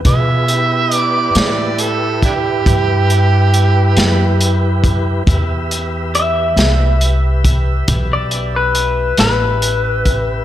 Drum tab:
HH |xxxxxxxxxxxx|xxxxxxxxxxxx|
SD |---o-----o--|---o-----o--|
BD |o----oo----o|o----oo----o|